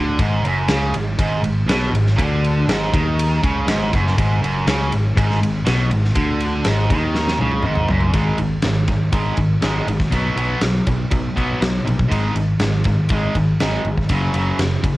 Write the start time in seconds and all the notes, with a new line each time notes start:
Already playing: D2 D3
0.19 G#1 G#2, kick, ride
0.43 F#1 F#2, ride
0.68 C#2 C#3, snare, ride
0.92 G#1 G#2, ride
1.18 G#1 G#2, kick, ride
1.42 G#1 G#2, ride
1.66 B1 B2, snare, ride
1.92 G#1 G#2, ride
2.06 snare
2.18 D2 D3, kick, ride
2.44 ride
2.67 G#1 G#2, snare, ride
2.93 D#2 D#3, kick, ride
3.19 ride
3.43 C#2 C#3, kick, ride
3.67 G#1 G#2, snare, ride
3.93 F#1 F#2, kick, ride
4.07 snare
4.18 G#1 G#2, kick, ride
4.42 F#1 F#2, ride
4.67 C#2 C#3, snare, ride
4.92 G#1 G#2, ride
5.15 G#1 G#2, kick, ride
5.31 snare
5.41 G#1 G#2, ride
5.66 B1 B2, snare, ride
5.91 G#1 G#2, ride
6.05 snare
6.15 D2 D3, kick, ride
6.41 ride
6.65 G#1 G#2, snare, ride
6.90 D#2 D#3, kick, ride
7.15 snare
7.28 snare
7.38 C#2 C#3, high tom
7.51 high tom
7.62 G#1 G#2, mid tom
7.75 mid tom
7.88 F#1 F#2, floor tom
8.01 floor tom
8.13 G#1 G#2 D#3 G#3, kick, ride
8.38 G#1 G#2 D#3, ride
8.62 G#1 G#2 D#3, snare, ride
8.88 G#2 D#3, kick, ride
9.12 G#1 G#2 D#3 G#3, kick, ride
9.37 G#1 G#2 D#3, kick, ride
9.61 G#1 G#2 D#3 G#3, snare, ride
9.86 G#1 G#2 D#3, ride
10.00 kick, snare
10.10 B1 B2 F#3 B3, kick, ride
10.36 B1 B2 F#3 B3, ride
10.61 B1 B2 F#3, snare, ride
10.87 B1 B2 F#3, kick, ride
11.11 B1 B2 F#3, kick, ride
11.36 B1 B2 F#3 B3, kick, ride
11.61 B1 B2 F#3, snare, ride
11.85 A#1 B2 F#3, ride
11.99 kick
12.10 G#1 G#2 D#3 G#3, kick, ride
12.35 G#1 G#2 D#3, ride
12.59 G#1 G#2 D#3, snare, ride
12.84 G#2 D#3, kick, ride
13.09 G#1 G#2 D#3 G#3, kick, ride
13.35 G#1 G#2 D#3, kick, ride
13.60 G#1 G#2 D#3 G#3, snare, ride
13.84 G#1 G#2 D#3, ride
13.97 kick
14.09 F#1 F#2 C#3 F#3, kick, ride
14.34 F#1 F#2 C#3 F#3, ride
14.59 F#1 F#2 C#3, snare, ride
14.83 F#1 F#2 C#3, kick, ride